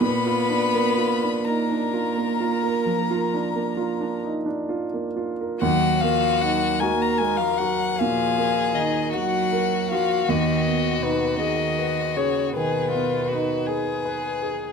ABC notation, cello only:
X:1
M:12/8
L:1/16
Q:3/8=51
K:Ebm
V:1 name="Cello" clef=bass
C6 B,12 z6 | G,2 F,2 G,2 A, B, A, F, G,2 F,4 E,2 G,4 F,2 | E,4 C,2 E,4 D,2 C,8- C,2 z2 |]